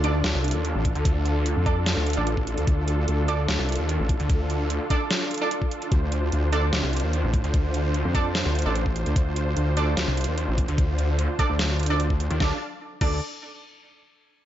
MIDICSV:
0, 0, Header, 1, 6, 480
1, 0, Start_track
1, 0, Tempo, 405405
1, 1246, Time_signature, 4, 2, 24, 8
1, 17110, End_track
2, 0, Start_track
2, 0, Title_t, "Supersaw synth"
2, 0, Program_c, 0, 81
2, 0, Note_on_c, 0, 62, 81
2, 0, Note_on_c, 0, 65, 73
2, 0, Note_on_c, 0, 69, 90
2, 6983, Note_off_c, 0, 69, 0
2, 7006, Note_on_c, 0, 72, 90
2, 14638, Note_off_c, 0, 62, 0
2, 14638, Note_off_c, 0, 65, 0
2, 14663, Note_off_c, 0, 72, 0
2, 14687, Note_on_c, 0, 62, 72
2, 14687, Note_on_c, 0, 74, 69
2, 14687, Note_on_c, 0, 77, 70
2, 14687, Note_on_c, 0, 81, 80
2, 14910, Note_off_c, 0, 62, 0
2, 14910, Note_off_c, 0, 74, 0
2, 14910, Note_off_c, 0, 77, 0
2, 14910, Note_off_c, 0, 81, 0
2, 17110, End_track
3, 0, Start_track
3, 0, Title_t, "Synth stab"
3, 0, Program_c, 1, 62
3, 45, Note_on_c, 1, 62, 90
3, 45, Note_on_c, 1, 69, 83
3, 45, Note_on_c, 1, 74, 97
3, 172, Note_off_c, 1, 62, 0
3, 172, Note_off_c, 1, 69, 0
3, 172, Note_off_c, 1, 74, 0
3, 1966, Note_on_c, 1, 62, 90
3, 1966, Note_on_c, 1, 69, 81
3, 1966, Note_on_c, 1, 74, 98
3, 2093, Note_off_c, 1, 62, 0
3, 2093, Note_off_c, 1, 69, 0
3, 2093, Note_off_c, 1, 74, 0
3, 2570, Note_on_c, 1, 62, 83
3, 2570, Note_on_c, 1, 69, 74
3, 2570, Note_on_c, 1, 74, 89
3, 2689, Note_off_c, 1, 62, 0
3, 2689, Note_off_c, 1, 69, 0
3, 2689, Note_off_c, 1, 74, 0
3, 3886, Note_on_c, 1, 62, 95
3, 3886, Note_on_c, 1, 69, 85
3, 3886, Note_on_c, 1, 74, 103
3, 4013, Note_off_c, 1, 62, 0
3, 4013, Note_off_c, 1, 69, 0
3, 4013, Note_off_c, 1, 74, 0
3, 5806, Note_on_c, 1, 62, 89
3, 5806, Note_on_c, 1, 69, 81
3, 5806, Note_on_c, 1, 74, 97
3, 5933, Note_off_c, 1, 62, 0
3, 5933, Note_off_c, 1, 69, 0
3, 5933, Note_off_c, 1, 74, 0
3, 6410, Note_on_c, 1, 62, 95
3, 6410, Note_on_c, 1, 69, 88
3, 6410, Note_on_c, 1, 74, 103
3, 6484, Note_off_c, 1, 62, 0
3, 6484, Note_off_c, 1, 69, 0
3, 6484, Note_off_c, 1, 74, 0
3, 7725, Note_on_c, 1, 62, 96
3, 7726, Note_on_c, 1, 69, 85
3, 7726, Note_on_c, 1, 74, 104
3, 7852, Note_off_c, 1, 62, 0
3, 7853, Note_off_c, 1, 69, 0
3, 7853, Note_off_c, 1, 74, 0
3, 9646, Note_on_c, 1, 62, 88
3, 9646, Note_on_c, 1, 69, 82
3, 9646, Note_on_c, 1, 74, 97
3, 9772, Note_off_c, 1, 74, 0
3, 9773, Note_off_c, 1, 62, 0
3, 9773, Note_off_c, 1, 69, 0
3, 10250, Note_on_c, 1, 62, 85
3, 10250, Note_on_c, 1, 69, 74
3, 10250, Note_on_c, 1, 74, 88
3, 10369, Note_off_c, 1, 62, 0
3, 10369, Note_off_c, 1, 69, 0
3, 10369, Note_off_c, 1, 74, 0
3, 11566, Note_on_c, 1, 62, 95
3, 11566, Note_on_c, 1, 69, 85
3, 11566, Note_on_c, 1, 74, 104
3, 11692, Note_off_c, 1, 62, 0
3, 11693, Note_off_c, 1, 69, 0
3, 11693, Note_off_c, 1, 74, 0
3, 13486, Note_on_c, 1, 62, 85
3, 13486, Note_on_c, 1, 69, 82
3, 13486, Note_on_c, 1, 74, 101
3, 13613, Note_off_c, 1, 62, 0
3, 13613, Note_off_c, 1, 69, 0
3, 13613, Note_off_c, 1, 74, 0
3, 14090, Note_on_c, 1, 62, 99
3, 14090, Note_on_c, 1, 69, 90
3, 14090, Note_on_c, 1, 74, 111
3, 14164, Note_off_c, 1, 74, 0
3, 14165, Note_off_c, 1, 62, 0
3, 14165, Note_off_c, 1, 69, 0
3, 14686, Note_on_c, 1, 62, 87
3, 14686, Note_on_c, 1, 69, 82
3, 14686, Note_on_c, 1, 74, 93
3, 14823, Note_off_c, 1, 62, 0
3, 14823, Note_off_c, 1, 69, 0
3, 14823, Note_off_c, 1, 74, 0
3, 15406, Note_on_c, 1, 74, 100
3, 15407, Note_on_c, 1, 62, 92
3, 15407, Note_on_c, 1, 69, 82
3, 15586, Note_off_c, 1, 62, 0
3, 15586, Note_off_c, 1, 69, 0
3, 15586, Note_off_c, 1, 74, 0
3, 17110, End_track
4, 0, Start_track
4, 0, Title_t, "Detuned saw bass"
4, 0, Program_c, 2, 39
4, 410, Note_on_c, 2, 36, 100
4, 630, Note_off_c, 2, 36, 0
4, 650, Note_on_c, 2, 39, 101
4, 870, Note_off_c, 2, 39, 0
4, 1130, Note_on_c, 2, 38, 94
4, 1830, Note_off_c, 2, 38, 0
4, 2330, Note_on_c, 2, 38, 99
4, 2550, Note_off_c, 2, 38, 0
4, 4249, Note_on_c, 2, 36, 96
4, 4470, Note_off_c, 2, 36, 0
4, 4490, Note_on_c, 2, 39, 97
4, 4710, Note_off_c, 2, 39, 0
4, 4970, Note_on_c, 2, 38, 95
4, 5670, Note_off_c, 2, 38, 0
4, 8090, Note_on_c, 2, 36, 98
4, 8310, Note_off_c, 2, 36, 0
4, 8329, Note_on_c, 2, 39, 98
4, 8550, Note_off_c, 2, 39, 0
4, 8809, Note_on_c, 2, 38, 100
4, 9510, Note_off_c, 2, 38, 0
4, 10009, Note_on_c, 2, 38, 99
4, 10230, Note_off_c, 2, 38, 0
4, 11929, Note_on_c, 2, 36, 99
4, 12150, Note_off_c, 2, 36, 0
4, 12170, Note_on_c, 2, 39, 98
4, 12390, Note_off_c, 2, 39, 0
4, 12650, Note_on_c, 2, 38, 94
4, 13350, Note_off_c, 2, 38, 0
4, 14569, Note_on_c, 2, 39, 98
4, 14667, Note_off_c, 2, 39, 0
4, 17110, End_track
5, 0, Start_track
5, 0, Title_t, "Wobble bass"
5, 0, Program_c, 3, 39
5, 0, Note_on_c, 3, 38, 97
5, 268, Note_off_c, 3, 38, 0
5, 286, Note_on_c, 3, 38, 102
5, 390, Note_off_c, 3, 38, 0
5, 890, Note_on_c, 3, 33, 96
5, 1110, Note_off_c, 3, 33, 0
5, 1850, Note_on_c, 3, 41, 101
5, 2310, Note_off_c, 3, 41, 0
5, 2570, Note_on_c, 3, 33, 96
5, 3030, Note_off_c, 3, 33, 0
5, 3050, Note_on_c, 3, 38, 101
5, 3147, Note_off_c, 3, 38, 0
5, 3166, Note_on_c, 3, 38, 101
5, 3627, Note_off_c, 3, 38, 0
5, 3647, Note_on_c, 3, 38, 96
5, 4108, Note_off_c, 3, 38, 0
5, 4127, Note_on_c, 3, 38, 100
5, 4230, Note_off_c, 3, 38, 0
5, 4730, Note_on_c, 3, 33, 95
5, 4950, Note_off_c, 3, 33, 0
5, 7006, Note_on_c, 3, 38, 94
5, 7467, Note_off_c, 3, 38, 0
5, 7486, Note_on_c, 3, 38, 96
5, 7947, Note_off_c, 3, 38, 0
5, 7966, Note_on_c, 3, 38, 101
5, 8070, Note_off_c, 3, 38, 0
5, 8569, Note_on_c, 3, 33, 96
5, 8790, Note_off_c, 3, 33, 0
5, 9530, Note_on_c, 3, 41, 100
5, 9990, Note_off_c, 3, 41, 0
5, 10249, Note_on_c, 3, 33, 96
5, 10710, Note_off_c, 3, 33, 0
5, 10730, Note_on_c, 3, 38, 101
5, 10827, Note_off_c, 3, 38, 0
5, 10845, Note_on_c, 3, 38, 98
5, 11307, Note_off_c, 3, 38, 0
5, 11326, Note_on_c, 3, 38, 97
5, 11787, Note_off_c, 3, 38, 0
5, 11807, Note_on_c, 3, 38, 96
5, 11910, Note_off_c, 3, 38, 0
5, 12410, Note_on_c, 3, 33, 92
5, 12630, Note_off_c, 3, 33, 0
5, 13610, Note_on_c, 3, 38, 98
5, 14550, Note_off_c, 3, 38, 0
5, 14686, Note_on_c, 3, 38, 98
5, 14823, Note_off_c, 3, 38, 0
5, 15406, Note_on_c, 3, 38, 100
5, 15629, Note_off_c, 3, 38, 0
5, 17110, End_track
6, 0, Start_track
6, 0, Title_t, "Drums"
6, 46, Note_on_c, 9, 42, 57
6, 164, Note_off_c, 9, 42, 0
6, 285, Note_on_c, 9, 38, 119
6, 285, Note_on_c, 9, 42, 85
6, 404, Note_off_c, 9, 38, 0
6, 404, Note_off_c, 9, 42, 0
6, 526, Note_on_c, 9, 42, 50
6, 567, Note_off_c, 9, 42, 0
6, 567, Note_on_c, 9, 42, 68
6, 606, Note_off_c, 9, 42, 0
6, 606, Note_on_c, 9, 42, 79
6, 724, Note_off_c, 9, 42, 0
6, 766, Note_on_c, 9, 42, 85
6, 884, Note_off_c, 9, 42, 0
6, 1006, Note_on_c, 9, 36, 106
6, 1006, Note_on_c, 9, 42, 57
6, 1124, Note_off_c, 9, 36, 0
6, 1124, Note_off_c, 9, 42, 0
6, 1130, Note_on_c, 9, 42, 38
6, 1246, Note_off_c, 9, 42, 0
6, 1246, Note_on_c, 9, 36, 127
6, 1246, Note_on_c, 9, 42, 85
6, 1364, Note_off_c, 9, 36, 0
6, 1365, Note_off_c, 9, 42, 0
6, 1486, Note_on_c, 9, 42, 56
6, 1605, Note_off_c, 9, 42, 0
6, 1726, Note_on_c, 9, 42, 83
6, 1845, Note_off_c, 9, 42, 0
6, 1966, Note_on_c, 9, 36, 113
6, 1967, Note_on_c, 9, 42, 55
6, 2084, Note_off_c, 9, 36, 0
6, 2085, Note_off_c, 9, 42, 0
6, 2206, Note_on_c, 9, 38, 127
6, 2206, Note_on_c, 9, 42, 85
6, 2325, Note_off_c, 9, 38, 0
6, 2325, Note_off_c, 9, 42, 0
6, 2446, Note_on_c, 9, 42, 50
6, 2487, Note_off_c, 9, 42, 0
6, 2487, Note_on_c, 9, 42, 65
6, 2526, Note_off_c, 9, 42, 0
6, 2526, Note_on_c, 9, 42, 85
6, 2644, Note_off_c, 9, 42, 0
6, 2686, Note_on_c, 9, 42, 81
6, 2804, Note_off_c, 9, 42, 0
6, 2810, Note_on_c, 9, 36, 62
6, 2926, Note_on_c, 9, 42, 56
6, 2928, Note_off_c, 9, 36, 0
6, 3044, Note_off_c, 9, 42, 0
6, 3050, Note_on_c, 9, 42, 39
6, 3166, Note_off_c, 9, 42, 0
6, 3166, Note_on_c, 9, 36, 127
6, 3166, Note_on_c, 9, 42, 84
6, 3284, Note_off_c, 9, 36, 0
6, 3284, Note_off_c, 9, 42, 0
6, 3406, Note_on_c, 9, 42, 58
6, 3524, Note_off_c, 9, 42, 0
6, 3646, Note_on_c, 9, 42, 83
6, 3764, Note_off_c, 9, 42, 0
6, 3886, Note_on_c, 9, 42, 54
6, 4005, Note_off_c, 9, 42, 0
6, 4126, Note_on_c, 9, 38, 127
6, 4126, Note_on_c, 9, 42, 81
6, 4245, Note_off_c, 9, 38, 0
6, 4245, Note_off_c, 9, 42, 0
6, 4366, Note_on_c, 9, 42, 50
6, 4408, Note_off_c, 9, 42, 0
6, 4408, Note_on_c, 9, 42, 65
6, 4447, Note_off_c, 9, 42, 0
6, 4447, Note_on_c, 9, 42, 81
6, 4565, Note_off_c, 9, 42, 0
6, 4607, Note_on_c, 9, 42, 79
6, 4725, Note_off_c, 9, 42, 0
6, 4846, Note_on_c, 9, 36, 111
6, 4847, Note_on_c, 9, 42, 54
6, 4965, Note_off_c, 9, 36, 0
6, 4965, Note_off_c, 9, 42, 0
6, 4970, Note_on_c, 9, 42, 38
6, 5086, Note_off_c, 9, 42, 0
6, 5086, Note_on_c, 9, 36, 127
6, 5086, Note_on_c, 9, 42, 81
6, 5205, Note_off_c, 9, 36, 0
6, 5205, Note_off_c, 9, 42, 0
6, 5326, Note_on_c, 9, 42, 55
6, 5445, Note_off_c, 9, 42, 0
6, 5566, Note_on_c, 9, 42, 78
6, 5685, Note_off_c, 9, 42, 0
6, 5806, Note_on_c, 9, 36, 111
6, 5806, Note_on_c, 9, 42, 53
6, 5924, Note_off_c, 9, 36, 0
6, 5924, Note_off_c, 9, 42, 0
6, 6045, Note_on_c, 9, 38, 123
6, 6045, Note_on_c, 9, 42, 78
6, 6164, Note_off_c, 9, 38, 0
6, 6164, Note_off_c, 9, 42, 0
6, 6286, Note_on_c, 9, 42, 49
6, 6327, Note_off_c, 9, 42, 0
6, 6327, Note_on_c, 9, 42, 63
6, 6365, Note_off_c, 9, 42, 0
6, 6365, Note_on_c, 9, 42, 77
6, 6484, Note_off_c, 9, 42, 0
6, 6526, Note_on_c, 9, 42, 77
6, 6644, Note_off_c, 9, 42, 0
6, 6650, Note_on_c, 9, 36, 67
6, 6766, Note_on_c, 9, 42, 54
6, 6768, Note_off_c, 9, 36, 0
6, 6884, Note_off_c, 9, 42, 0
6, 6890, Note_on_c, 9, 42, 37
6, 7005, Note_off_c, 9, 42, 0
6, 7005, Note_on_c, 9, 42, 74
6, 7006, Note_on_c, 9, 36, 122
6, 7124, Note_off_c, 9, 36, 0
6, 7124, Note_off_c, 9, 42, 0
6, 7246, Note_on_c, 9, 42, 51
6, 7364, Note_off_c, 9, 42, 0
6, 7486, Note_on_c, 9, 42, 75
6, 7605, Note_off_c, 9, 42, 0
6, 7726, Note_on_c, 9, 42, 52
6, 7845, Note_off_c, 9, 42, 0
6, 7966, Note_on_c, 9, 38, 115
6, 7966, Note_on_c, 9, 42, 75
6, 8084, Note_off_c, 9, 38, 0
6, 8084, Note_off_c, 9, 42, 0
6, 8206, Note_on_c, 9, 42, 46
6, 8247, Note_off_c, 9, 42, 0
6, 8247, Note_on_c, 9, 42, 61
6, 8286, Note_off_c, 9, 42, 0
6, 8286, Note_on_c, 9, 42, 75
6, 8404, Note_off_c, 9, 42, 0
6, 8446, Note_on_c, 9, 42, 79
6, 8564, Note_off_c, 9, 42, 0
6, 8685, Note_on_c, 9, 42, 50
6, 8686, Note_on_c, 9, 36, 110
6, 8804, Note_off_c, 9, 36, 0
6, 8804, Note_off_c, 9, 42, 0
6, 8810, Note_on_c, 9, 42, 34
6, 8926, Note_off_c, 9, 42, 0
6, 8926, Note_on_c, 9, 36, 119
6, 8926, Note_on_c, 9, 42, 76
6, 9044, Note_off_c, 9, 36, 0
6, 9044, Note_off_c, 9, 42, 0
6, 9165, Note_on_c, 9, 42, 52
6, 9284, Note_off_c, 9, 42, 0
6, 9406, Note_on_c, 9, 42, 76
6, 9524, Note_off_c, 9, 42, 0
6, 9645, Note_on_c, 9, 36, 105
6, 9646, Note_on_c, 9, 42, 52
6, 9764, Note_off_c, 9, 36, 0
6, 9764, Note_off_c, 9, 42, 0
6, 9886, Note_on_c, 9, 38, 113
6, 9886, Note_on_c, 9, 42, 75
6, 10004, Note_off_c, 9, 38, 0
6, 10004, Note_off_c, 9, 42, 0
6, 10126, Note_on_c, 9, 42, 47
6, 10167, Note_off_c, 9, 42, 0
6, 10167, Note_on_c, 9, 42, 61
6, 10207, Note_off_c, 9, 42, 0
6, 10207, Note_on_c, 9, 42, 77
6, 10325, Note_off_c, 9, 42, 0
6, 10366, Note_on_c, 9, 42, 78
6, 10484, Note_off_c, 9, 42, 0
6, 10489, Note_on_c, 9, 36, 63
6, 10606, Note_on_c, 9, 42, 53
6, 10608, Note_off_c, 9, 36, 0
6, 10725, Note_off_c, 9, 42, 0
6, 10730, Note_on_c, 9, 42, 35
6, 10845, Note_on_c, 9, 36, 118
6, 10846, Note_off_c, 9, 42, 0
6, 10846, Note_on_c, 9, 42, 78
6, 10964, Note_off_c, 9, 36, 0
6, 10965, Note_off_c, 9, 42, 0
6, 11086, Note_on_c, 9, 42, 54
6, 11205, Note_off_c, 9, 42, 0
6, 11326, Note_on_c, 9, 42, 78
6, 11445, Note_off_c, 9, 42, 0
6, 11566, Note_on_c, 9, 42, 53
6, 11684, Note_off_c, 9, 42, 0
6, 11806, Note_on_c, 9, 38, 108
6, 11806, Note_on_c, 9, 42, 78
6, 11924, Note_off_c, 9, 38, 0
6, 11924, Note_off_c, 9, 42, 0
6, 12046, Note_on_c, 9, 42, 47
6, 12087, Note_off_c, 9, 42, 0
6, 12087, Note_on_c, 9, 42, 61
6, 12126, Note_off_c, 9, 42, 0
6, 12126, Note_on_c, 9, 42, 79
6, 12245, Note_off_c, 9, 42, 0
6, 12286, Note_on_c, 9, 42, 76
6, 12405, Note_off_c, 9, 42, 0
6, 12526, Note_on_c, 9, 36, 100
6, 12526, Note_on_c, 9, 42, 52
6, 12644, Note_off_c, 9, 36, 0
6, 12645, Note_off_c, 9, 42, 0
6, 12650, Note_on_c, 9, 42, 36
6, 12766, Note_off_c, 9, 42, 0
6, 12766, Note_on_c, 9, 36, 118
6, 12766, Note_on_c, 9, 42, 81
6, 12884, Note_off_c, 9, 36, 0
6, 12885, Note_off_c, 9, 42, 0
6, 13007, Note_on_c, 9, 42, 54
6, 13125, Note_off_c, 9, 42, 0
6, 13246, Note_on_c, 9, 42, 85
6, 13365, Note_off_c, 9, 42, 0
6, 13486, Note_on_c, 9, 36, 104
6, 13486, Note_on_c, 9, 42, 55
6, 13604, Note_off_c, 9, 36, 0
6, 13604, Note_off_c, 9, 42, 0
6, 13726, Note_on_c, 9, 38, 114
6, 13726, Note_on_c, 9, 42, 80
6, 13844, Note_off_c, 9, 38, 0
6, 13844, Note_off_c, 9, 42, 0
6, 13966, Note_on_c, 9, 42, 50
6, 14007, Note_off_c, 9, 42, 0
6, 14007, Note_on_c, 9, 42, 64
6, 14046, Note_off_c, 9, 42, 0
6, 14046, Note_on_c, 9, 42, 81
6, 14165, Note_off_c, 9, 42, 0
6, 14206, Note_on_c, 9, 42, 81
6, 14324, Note_off_c, 9, 42, 0
6, 14330, Note_on_c, 9, 36, 61
6, 14446, Note_on_c, 9, 42, 55
6, 14448, Note_off_c, 9, 36, 0
6, 14565, Note_off_c, 9, 42, 0
6, 14570, Note_on_c, 9, 42, 37
6, 14686, Note_on_c, 9, 36, 118
6, 14686, Note_on_c, 9, 38, 86
6, 14688, Note_off_c, 9, 42, 0
6, 14804, Note_off_c, 9, 38, 0
6, 14805, Note_off_c, 9, 36, 0
6, 15406, Note_on_c, 9, 36, 118
6, 15406, Note_on_c, 9, 49, 91
6, 15524, Note_off_c, 9, 49, 0
6, 15525, Note_off_c, 9, 36, 0
6, 17110, End_track
0, 0, End_of_file